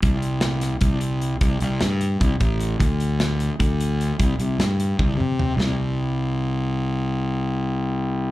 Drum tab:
HH |xxxxxxx|xxxxxxx|xxxxxxx|xxxx---|
SD |--oo---|--o----|--o----|--o----|
T1 |-------|-------|-------|----o--|
T2 |-------|-------|-------|-----o-|
FT |-------|-------|-------|------o|
BD |o---o--|o---oo-|o---o--|o---o--|

HH |-------|-------|
SD |o------|-------|
T1 |-------|-------|
T2 |-------|-------|
FT |-------|-------|
BD |-------|-------|